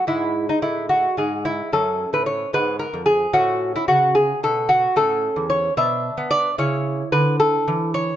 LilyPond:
<<
  \new Staff \with { instrumentName = "Lute" } { \time 6/8 \key a \lydian \tempo 4. = 74 << { e'8. dis'16 e'8 fis'8 gis'8 e'8 | a'8. b'16 cis''8 ces''8 ais'8 aes'8 | fis'8. e'16 fis'8 gis'8 a'8 fis'8 | \key a \major a'4 cis''8 e''4 d''8 |
cis''4 b'8 a'4 cis''8 | } \\ { gis2. | cis'4. ces'4. | cis'2. | cis'4. d'4. |
e'2. | } >> }
  \new Staff \with { instrumentName = "Lute" } { \clef bass \time 6/8 \key a \lydian gis,4 a,4 gis,4 | fis,8. a,8. aes,8. f,8. | a,4 cis4 b,4 | \key a \major a,8. e,8. b,8. b8. |
cis4 d4 e4 | }
>>